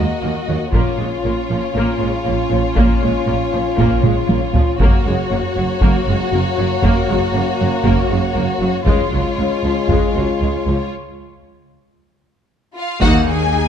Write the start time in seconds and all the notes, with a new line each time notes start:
Already playing: A#3 F#4 D#5
0.22 D#2 A#3
0.48 D#2 F#3
0.72 A#1 A#2 A#3 C#4 F4 C#5, taiko
0.98 A#1 A#2 G#3
1.24 A#1 A#2 A#3
1.49 A#1 A#2 F3
1.74 A#1 A#2 A#3
1.99 A#1 A#2 G#3
2.25 A#1 A#2 A#3
2.50 A#1 A#2 F3
2.76 A#1 A#2 A#3, taiko
3.01 A#1 A#2 G#3
3.26 A#1 A#2 A#3
3.52 A#1 A#2 F3
3.78 A#1 A#2 A#3, taiko
4.02 A#1 A#2 G#3, taiko mid
4.28 A#1 A#2 A#3, taiko high
4.53 A#1 A#2 F3, taiko low
4.79 F#1 F#2 A#3 F#4 C#5, taiko
5.06 F#1 F#2 G#3
5.30 F#1 F#2 A#3
5.55 F#1 F#2 F#3
5.81 F#1 F#2 A#3, taiko
6.07 F#1 F#2 G#3
6.32 F#1 F#2 A#3
6.57 F#1 F#2 F#3
6.82 F#1 F#2 A#3, taiko
7.08 F#1 F#2 G#3
7.34 F#1 F#2 A#3
7.59 F#1 F#2 F#3
7.84 F#1 F#2 A#3, taiko
8.10 F#1 F#2 G#3
8.35 F#1 F#2 A#3
8.61 F#1 F#2 F#3
8.85 C#2 G#3 F4 C#5, taiko
8.90 G#3 F4
9.12 C#2 F#3
9.37 C#2 G#3
9.63 C#2 F3
9.88 C#2 G#3, taiko
10.15 C#2 F#3
10.41 C#2 G#3
10.67 C#2 F3
12.75 F4 F5
13.01 D#2 D#3 A#3 D#4 F#4 F#5, taiko
13.27 G#4 G#5